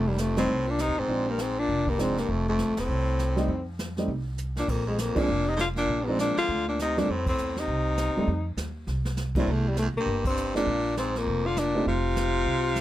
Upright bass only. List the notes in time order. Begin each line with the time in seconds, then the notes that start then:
Already playing: F1
0.48 C2
0.88 D#2
0.98 A1
1.08 A#1
1.68 F1
2.29 F1
2.68 G1
2.79 E1
2.88 C2
3.48 F2
4.08 C2
4.68 A#1
5.29 F1
5.88 A#1
6.37 muted upright bass stroke
6.49 D2
7.08 F2
7.38 E2
7.68 C2
8.07 D#2
8.17 E2
8.27 F2
8.57 D#2
8.87 C2
9.47 C2
9.94 B1
10.06 G1
10.67 A#1
11.26 F1
11.87 F1
12.46 C2